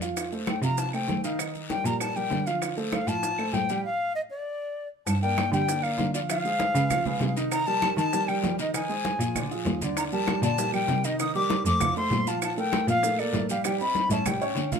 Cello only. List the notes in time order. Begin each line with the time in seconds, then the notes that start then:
Already playing: F2
0.62 C3
1.08 D#3
1.85 A#2
2.31 D3
3.08 A2
3.53 A2
5.07 G2
5.52 D3
5.98 D3
6.75 C#3
7.21 C3
7.97 D#3
8.43 F3
9.20 A#2
9.65 D#2
10.42 A#2
10.88 C3
11.65 F2
12.11 A#2
12.88 A#2
13.33 A2
14.10 A2
14.56 D3